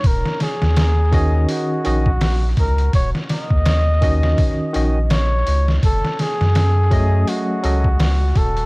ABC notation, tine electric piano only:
X:1
M:4/4
L:1/8
Q:"Swing 16ths" 1/4=83
K:Ebm
V:1 name="Tine electric piano"
z3 [E,DGe]2 [E,DGe] z2 | z3 [E,DGe]2 [E,DGe] z2 | z3 [G,=A,De]2 [G,D=Ae] z2 |]